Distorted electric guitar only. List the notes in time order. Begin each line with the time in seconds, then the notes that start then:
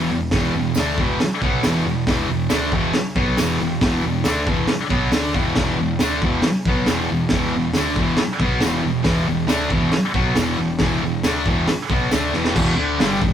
Already playing: E3
0.10 E2 B2
0.33 E2 B2 E3
0.55 E2 B2
0.78 D3 A3 D4
0.99 E2 B2 E3
1.23 muted distorted electric guitar stroke
1.43 B2 F#3 B3
1.64 E2 B2 E3
1.86 E2 B2
2.08 E2 B2 E3
2.29 E2 B2
2.49 D3 A3 D4
2.73 E2 B2 E3
2.96 muted distorted electric guitar stroke
3.16 B2 F#3 B3
3.39 E2 B2 E3
3.61 E2 B2
3.81 E2 B2 E3
4.03 E2 B2
4.25 D3 A3 D4
4.48 E2 B2 E3
4.69 muted distorted electric guitar stroke
4.89 B2 F#3 B3
5.12 D3 A3 D4
5.34 E2 B2 E3
5.57 E2 B2 E3
5.79 E2 B2
6.01 D3 A3 D4
6.24 E2 B2 E3
6.46 muted distorted electric guitar stroke
6.67 B2 F#3 B3
6.87 E2 B2 E3
7.11 E2 B2
7.31 E2 B2 E3
7.55 E2 B2
7.76 D3 A3 D4
7.98 E2 B2 E3
8.18 muted distorted electric guitar stroke
8.41 B2 F#3 B3
8.61 E2 B2 E3
8.83 E2 B2
9.03 E2 B2 E3
9.28 E2 B2
9.47 D3 A3 D4
9.69 E2 B2 E3
9.93 muted distorted electric guitar stroke
10.14 B2 F#3 B3
10.36 E2 B2 E3
10.58 E2 B2
10.79 E2 B2 E3
11.02 E2 B2
11.24 D3 A3 D4
11.46 E2 B2 E3
11.70 muted distorted electric guitar stroke
11.90 B2 F#3 B3
12.12 D3 A3 D4
12.33 E2 B2 E3
12.56 E2 B2 E3
12.76 D3 A3 D4
12.99 G2 D3 G3
13.23 E2 B2